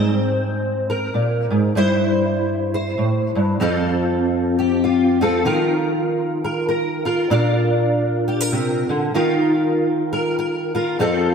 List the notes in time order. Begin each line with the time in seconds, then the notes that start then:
Already playing: G#2 C4 C5
0.90 A#4
1.14 A#2
1.50 G#2
1.75 G2 E4 C5
2.74 C5
2.98 A2
3.35 G2
3.60 F2 C4 F4 A4
4.59 G4
4.84 F4
5.21 C4 F4 A4
5.45 D#3 F4 A#4
6.44 A#4
6.69 A#4
7.05 F4 A#4
7.30 A#2 D4 F4 A#4
8.28 G4
8.40 A#4
8.52 C3
8.89 D3
9.14 D#3 F4 A#4
10.13 A#4
10.39 A#4
10.75 F4 A#4
10.99 F2 C4 F4 A4